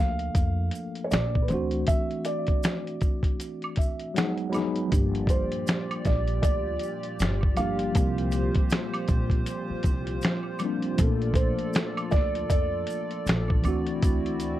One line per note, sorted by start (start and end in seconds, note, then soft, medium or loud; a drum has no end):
0.00 0.29 D2 medium
0.00 1.51 F3 medium
0.00 1.49 A3 medium
0.00 1.51 A#3 medium
0.00 1.51 D4 medium
0.00 1.51 A4 medium
0.00 1.01 F5 loud
0.19 closed hi-hat soft
0.35 0.67 F2 medium
0.35 kick loud
0.35 closed hi-hat medium
0.35 maracas medium
0.71 closed hi-hat medium
0.71 maracas soft
0.95 closed hi-hat soft
1.04 1.11 C#5 medium
1.11 1.44 A#1 medium
1.11 1.44 D5 medium
1.11 finger snap medium
1.11 snare loud
1.11 closed hi-hat medium
1.11 maracas medium
1.35 kick medium
1.42 1.49 B4 medium
1.48 1.82 D2 medium
1.48 2.71 E3 medium
1.48 2.72 A3 medium
1.48 2.73 C4 medium
1.48 1.84 C5 medium
1.48 closed hi-hat medium
1.48 maracas soft
1.52 2.73 D4 medium
1.52 2.74 F#4 medium
1.71 closed hi-hat soft
1.87 2.27 E5 medium
1.87 kick loud
1.87 closed hi-hat medium
1.87 maracas medium
2.11 closed hi-hat soft
2.25 3.73 D5 medium
2.25 closed hi-hat medium
2.25 maracas soft
2.47 kick medium
2.47 closed hi-hat soft
2.63 finger snap loud
2.63 snare loud
2.63 closed hi-hat medium
2.63 maracas medium
2.87 closed hi-hat soft
3.01 kick medium
3.01 closed hi-hat soft
3.01 maracas soft
3.23 kick medium
3.23 closed hi-hat soft
3.40 closed hi-hat medium
3.40 maracas medium
3.62 closed hi-hat soft
3.62 high woodblock medium
3.76 4.13 E5 medium
3.76 kick medium
3.76 closed hi-hat medium
3.81 maracas soft
3.99 closed hi-hat soft
4.14 4.46 F#3 medium
4.14 4.47 G#3 medium
4.14 4.48 B3 medium
4.14 4.51 F#5 medium
4.14 finger snap medium
4.14 snare loud
4.14 closed hi-hat medium
4.14 maracas medium
4.18 4.49 D#4 medium
4.18 4.49 G#4 medium
4.38 closed hi-hat soft
4.49 4.80 F#3 medium
4.49 4.81 G#3 medium
4.49 4.82 B3 medium
4.49 4.88 B5 medium
4.49 closed hi-hat medium
4.54 4.83 D#4 medium
4.54 4.83 G#4 medium
4.54 snare soft
4.54 high woodblock medium
4.54 maracas soft
4.76 closed hi-hat soft
4.87 5.98 F3 medium
4.87 5.99 G3 medium
4.87 6.00 A#3 medium
4.87 6.00 D4 medium
4.92 5.43 G1 loud
4.92 13.61 A#2 medium
4.92 13.61 F4 medium
4.92 10.95 G4 medium
4.92 6.01 G4 medium
4.92 7.92 D5 medium
4.92 kick loud
4.92 closed hi-hat medium
4.92 maracas medium
5.15 closed hi-hat soft
5.27 6.01 C5 medium
5.27 kick medium
5.27 closed hi-hat medium
5.27 maracas soft
5.52 closed hi-hat soft
5.67 finger snap medium
5.67 snare loud
5.67 closed hi-hat medium
5.67 maracas medium
5.91 closed hi-hat soft
5.91 high woodblock medium
6.05 6.38 A#1 medium
6.05 6.41 D5 medium
6.05 kick loud
6.05 snare soft
6.05 closed hi-hat medium
6.05 maracas soft
6.28 closed hi-hat soft
6.42 6.75 D2 loud
6.42 7.60 D5 medium
6.42 kick loud
6.42 closed hi-hat medium
6.42 maracas medium
6.79 closed hi-hat medium
6.79 maracas soft
7.03 closed hi-hat soft
7.20 7.52 G1 medium
7.20 finger snap medium
7.20 snare medium
7.20 closed hi-hat medium
7.20 maracas medium
7.41 kick medium
7.41 high woodblock soft
7.55 7.90 G1 medium
7.55 7.85 F3 medium
7.55 7.86 G3 medium
7.55 7.86 A#3 medium
7.55 9.81 F5 medium
7.55 closed hi-hat medium
7.55 high woodblock medium
7.55 maracas soft
7.59 7.87 D4 medium
7.59 7.87 G4 medium
7.79 closed hi-hat soft
7.92 8.47 C2 loud
7.92 9.03 F3 medium
7.92 9.03 G3 medium
7.92 9.04 A#3 medium
7.92 9.05 C4 medium
7.92 10.96 C5 medium
7.92 kick loud
7.92 closed hi-hat medium
7.92 maracas medium
7.98 9.06 G4 medium
8.18 closed hi-hat soft
8.32 closed hi-hat medium
8.32 maracas soft
8.55 kick medium
8.55 closed hi-hat soft
8.70 finger snap loud
8.70 snare loud
8.70 closed hi-hat medium
8.70 maracas medium
8.94 closed hi-hat soft
8.94 high woodblock medium
9.08 9.41 A#1 medium
9.08 kick loud
9.08 closed hi-hat medium
9.08 maracas soft
9.30 kick medium
9.30 closed hi-hat soft
9.46 closed hi-hat medium
9.46 maracas medium
9.70 muted upright bass stroke soft
9.83 10.17 C2 medium
9.83 kick medium
9.83 closed hi-hat medium
9.83 maracas soft
10.07 closed hi-hat soft
10.22 finger snap medium
10.22 snare loud
10.22 closed hi-hat medium
10.22 maracas medium
10.43 high woodblock soft
10.59 10.89 F3 medium
10.59 10.90 G3 medium
10.59 10.90 A#3 medium
10.59 closed hi-hat medium
10.59 high woodblock medium
10.59 maracas soft
10.64 10.91 C4 medium
10.64 10.92 D4 medium
10.82 closed hi-hat soft
10.96 11.50 A#1 loud
10.96 12.06 F3 medium
10.96 12.07 A3 medium
10.96 12.08 A#3 medium
10.96 13.62 A4 medium
10.96 14.60 D5 medium
10.96 kick loud
10.96 closed hi-hat medium
10.96 maracas medium
11.00 11.07 C4 medium
11.00 12.09 A4 medium
11.07 12.12 D4 medium
11.22 closed hi-hat soft
11.34 12.08 C5 medium
11.34 kick loud
11.34 closed hi-hat medium
11.34 maracas soft
11.59 closed hi-hat soft
11.73 finger snap medium
11.73 snare loud
11.73 closed hi-hat medium
11.73 maracas medium
11.97 closed hi-hat soft
11.97 high woodblock medium
12.11 12.45 D2 medium
12.11 12.48 D5 loud
12.11 kick loud
12.11 snare soft
12.11 closed hi-hat soft
12.11 maracas soft
12.35 closed hi-hat soft
12.50 12.82 F2 medium
12.50 14.60 D5 loud
12.50 kick loud
12.50 closed hi-hat medium
12.50 maracas medium
12.87 closed hi-hat medium
12.87 maracas medium
13.11 closed hi-hat soft
13.26 13.59 A#1 medium
13.26 finger snap medium
13.26 snare loud
13.26 closed hi-hat medium
13.26 maracas medium
13.48 kick medium
13.48 high woodblock soft
13.62 13.96 D2 loud
13.62 14.60 E3 medium
13.62 14.60 A3 medium
13.62 14.60 C4 medium
13.62 14.60 E4 medium
13.62 14.60 F#4 medium
13.62 closed hi-hat medium
13.62 high woodblock medium
13.62 maracas soft
13.66 14.60 D4 medium
13.66 14.60 F#4 medium
13.87 closed hi-hat soft
14.02 14.54 D2 loud
14.02 kick loud
14.02 closed hi-hat medium
14.02 maracas medium
14.26 closed hi-hat soft
14.40 closed hi-hat medium
14.40 maracas soft